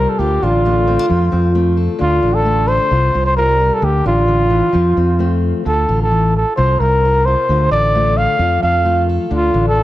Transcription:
Already playing: steel-string acoustic guitar C3 G3 F4, trumpet A#4
0.09 trumpet A4
0.19 fingered electric bass D2, steel-string acoustic guitar D3 F4, trumpet G4
0.42 fingered electric bass A1, steel-string acoustic guitar D4, trumpet F4
0.65 steel-string acoustic guitar A3 D4
0.87 steel-string acoustic guitar C4
0.99 steel-string acoustic guitar D4
1.09 fingered electric bass F2, steel-string acoustic guitar F3 C4
1.32 fingered electric bass F2, steel-string acoustic guitar C4
1.55 steel-string acoustic guitar A3 C4
1.77 steel-string acoustic guitar A4
1.99 fingered electric bass D2, steel-string acoustic guitar D3 D4, trumpet F4
2.23 fingered electric bass A1, steel-string acoustic guitar D4
2.34 trumpet A4
2.45 steel-string acoustic guitar A3 F4
2.68 steel-string acoustic guitar A4, trumpet C5
2.91 fingered electric bass C2, steel-string acoustic guitar C3 F4
3.14 fingered electric bass C2, steel-string acoustic guitar F4
3.26 trumpet C5
3.36 steel-string acoustic guitar G3 F4, trumpet A#4
3.60 steel-string acoustic guitar F4
3.73 trumpet A4
3.82 fingered electric bass D2, steel-string acoustic guitar D3, trumpet G4, muted steel-string acoustic guitar stroke
4.06 fingered electric bass A1, steel-string acoustic guitar D4, trumpet F4
4.28 steel-string acoustic guitar D3
4.50 steel-string acoustic guitar E3
4.72 fingered electric bass F2, steel-string acoustic guitar F3 C4
4.97 fingered electric bass F2, steel-string acoustic guitar C4
5.19 steel-string acoustic guitar A3 C4
5.66 fingered electric bass D2, steel-string acoustic guitar D3 F4, trumpet A4
5.88 fingered electric bass A1, steel-string acoustic guitar F4
6.02 trumpet A4
6.11 steel-string acoustic guitar E3
6.36 trumpet A4
6.56 fingered electric bass C2, steel-string acoustic guitar C3 F4, trumpet C5
6.80 fingered electric bass C2, steel-string acoustic guitar F4, trumpet A#4
7.05 steel-string acoustic guitar F4
7.25 steel-string acoustic guitar F4, trumpet C5
7.49 fingered electric bass D2, steel-string acoustic guitar D3 F4
7.71 fingered electric bass A1, steel-string acoustic guitar A4, trumpet D5
7.95 steel-string acoustic guitar A3 F4
8.17 steel-string acoustic guitar A4, trumpet F5
8.39 fingered electric bass F2, steel-string acoustic guitar F3 F4
8.62 fingered electric bass F2, steel-string acoustic guitar A4, trumpet F5
8.85 steel-string acoustic guitar A3 F4
9.09 steel-string acoustic guitar A4
9.31 fingered electric bass D2, steel-string acoustic guitar D3 D4, trumpet F4
9.54 fingered electric bass A1, steel-string acoustic guitar D4
9.68 trumpet A4
9.75 steel-string acoustic guitar E3

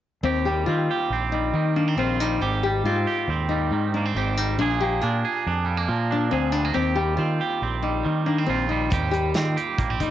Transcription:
0.23 fingered electric bass D#2, clean electric guitar D#2 G4, nylon-string guitar C4
0.45 clean electric guitar G3, nylon-string guitar G4
0.66 fingered electric bass D#3, clean electric guitar C4, nylon-string guitar F4
0.91 clean electric guitar G4
1.10 fingered electric bass A#1, clean electric guitar C4
1.32 clean electric guitar G3, nylon-string guitar D#4
1.53 fingered electric bass D#3, clean electric guitar D#3
1.76 clean electric guitar A#3, nylon-string guitar D4
1.88 clean electric guitar C4
1.97 fingered electric bass A#1, clean electric guitar D#2 F4, nylon-string guitar C4
2.20 clean electric guitar G3, nylon-string guitar D#4
2.41 fingered electric bass G#1, clean electric guitar G#2 G4, nylon-string guitar C4
2.63 clean electric guitar G3, nylon-string guitar G4
2.84 fingered electric bass G#2, clean electric guitar C4, nylon-string guitar F4
3.07 clean electric guitar G4
3.28 fingered electric bass D#2, clean electric guitar C4
3.49 clean electric guitar G3, nylon-string guitar D#4
3.71 fingered electric bass G#2, clean electric guitar D#3
3.94 clean electric guitar A#3, nylon-string guitar D4
4.05 clean electric guitar C4
4.15 fingered electric bass G#1, clean electric guitar G#2 G4, nylon-string guitar C4
4.37 clean electric guitar G3, nylon-string guitar D#4
4.58 fingered electric bass A#1, clean electric guitar A#2 G#4, nylon-string guitar D4
4.80 clean electric guitar A#3, nylon-string guitar G4
5.01 fingered electric bass A#2, clean electric guitar D4, nylon-string guitar F4
5.24 clean electric guitar G#4
5.46 fingered electric bass F2, clean electric guitar D4
5.65 clean electric guitar G3
5.77 clean electric guitar A#3
5.88 fingered electric bass A#2, clean electric guitar F3
6.11 clean electric guitar D4, nylon-string guitar D4
6.31 fingered electric bass D2, clean electric guitar A#2 G#4, nylon-string guitar C4
6.52 clean electric guitar G3, nylon-string guitar D4
6.65 clean electric guitar A#3
6.74 clean electric guitar D#2 G4, fingered electric bass D#2, nylon-string guitar C4
6.95 clean electric guitar G3, nylon-string guitar G4
7.17 fingered electric bass D#3, clean electric guitar C4, nylon-string guitar F4
7.41 clean electric guitar G4
7.62 fingered electric bass A#1, clean electric guitar C4
7.83 clean electric guitar G3, nylon-string guitar D#4
8.05 clean electric guitar D#3, fingered electric bass D#3
8.26 clean electric guitar A#3, nylon-string guitar D4
8.38 clean electric guitar C4
8.47 fingered electric bass A#1, clean electric guitar D#2 F4, nylon-string guitar C4
8.69 clean electric guitar G3, nylon-string guitar D#4
8.90 fingered electric bass D#2, clean electric guitar D#2 G4, nylon-string guitar C4, kick, closed hi-hat
9.11 clean electric guitar G3, nylon-string guitar G4, closed hi-hat
9.34 fingered electric bass D#3, clean electric guitar C4, nylon-string guitar F4, snare, closed hi-hat
9.57 clean electric guitar G4, closed hi-hat
9.78 fingered electric bass A#1, clean electric guitar A#3, kick, closed hi-hat
9.90 clean electric guitar C4
10.00 clean electric guitar G3, nylon-string guitar D#4, kick, closed hi-hat

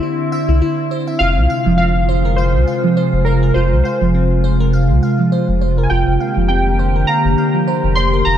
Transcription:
Already playing: ambient pad D3 C4 E4, synth keys E5
0.03 synth pluck E4
0.32 synth pluck E5
0.49 sub bass C2, synth pluck E4
0.62 synth pluck E4
0.91 synth pluck C5
1.08 synth pluck E5
1.19 sub bass F1, ambient pad C3 G#3 F4, synth pluck F4, synth keys F5
1.37 sub bass C2
1.50 synth pluck F5
1.66 sub bass F1, synth pluck F3
1.78 synth pluck C4, synth keys F5
2.09 synth pluck C5
2.25 synth pluck A#4
2.36 synth keys C5, synth pluck F5
2.54 sub bass C2
2.68 synth pluck F5
2.84 synth pluck F3
2.97 synth pluck C5
3.13 sub bass F1
3.25 synth keys A#4, synth pluck C5
3.43 synth pluck A#4
3.54 sub bass F1, synth pluck F4, synth keys C5
3.72 sub bass C2
3.84 synth keys C5, synth pluck F5
4.02 sub bass F1, synth pluck F3
4.14 synth pluck C4
4.44 synth pluck C5
4.60 synth pluck A#4
4.73 synth pluck F5
4.90 sub bass C2
5.03 synth pluck F5
5.19 synth pluck F3
5.32 synth pluck C5
5.49 sub bass F1
5.61 synth pluck C5
5.78 synth pluck A#4
5.83 synth keys G#5
5.90 sub bass F1, ambient pad D3 A#3 G4, synth pluck F4, synth keys G5
6.07 sub bass F1
6.20 synth pluck F5
6.37 sub bass F1, synth pluck F3
6.48 synth pluck C4, synth keys G5
6.79 synth pluck C5
6.96 synth pluck A#4
7.07 synth pluck F5, synth keys A#5
7.25 sub bass F1
7.38 synth pluck F5
7.55 synth pluck F3
7.68 synth pluck C5
7.84 sub bass F1
7.95 synth pluck C5, synth keys C6
8.13 synth pluck A#4
8.25 sub bass F1, synth pluck F4, synth keys A#5

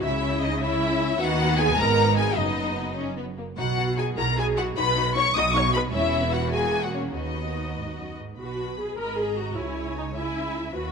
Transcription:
0.02 double bass section C#2, cello section C#3, violin section C#4 E4 E5, viola section E4
0.42 viola section D#4, violin section D#5
0.61 violin section C#4 E4 E5, viola section E4
1.20 double bass section D#2, cello section D#3, violin section B3 D#4 F#5, viola section F#4
1.59 viola section G#4, violin section G#5
1.77 double bass section G#1, cello section G#2, violin section B3 D#4 A#5, viola section A#4
2.17 viola section G#4, violin section G#5
2.37 double bass section F#1, cello section F#2, violin section B3 D#4 D#5, viola section D#4
2.97 violin section C#4
3.17 violin section B3
3.38 violin section A#3
3.58 double bass section B1, cello section B2, violin section D#4 F#4 F#5, viola section F#4
3.78 violin section D#4 F#4
3.96 violin section D#4 F#4 G#5, viola section G#4
4.17 double bass section B1, cello section B2, violin section E4 F#4 A#5, viola section A#4
4.37 violin section E4 F#4 G#5, viola section G#4
4.56 violin section E4 F#4 F#5, viola section F#4
4.77 double bass section B1, cello section B2, violin section D#4 F#4 B5, viola section B4
4.96 violin section D#4 F#4
5.15 violin section D#4 F#4 C#6, viola section C#5
5.34 double bass section B1, cello section B2, violin section D#4 F#4 D#6, viola section D#5
5.53 violin section D#4 F#4 C#6, viola section C#5
5.72 violin section D#4 F#4 B5, viola section B4
5.92 double bass section E1, cello section E2, violin section C#4 E4 E5, viola section E4
6.22 violin section B3
6.33 viola section F#4, violin section F#5
6.52 violin section A#3 F#4 G#5, viola section G#4
6.83 viola section F#4, violin section F#5
6.94 viola section C#4, violin section C#5
7.14 double bass section D#2, cello section D#2, violin section B3 F#4 D#5, viola section D#4
7.77 cello section G#2
7.97 cello section F#2
8.18 cello section G#2
8.38 double bass section B1, cello section B2, viola section F#4, violin section B4 B5
8.80 viola section G#4
8.98 double bass section G#1, cello section G#2, viola section A#4, violin section D#5 B5
9.17 viola section G#4
9.27 violin section A#5
9.37 viola section F#4
9.56 double bass section C#2, cello section C#2, viola section E4, violin section C#5 G#5
9.97 viola section D#4
10.15 viola section E4, violin section E5 G#5
10.74 cello section D#2, double bass section D#2, viola section F#4, violin section B4 B5

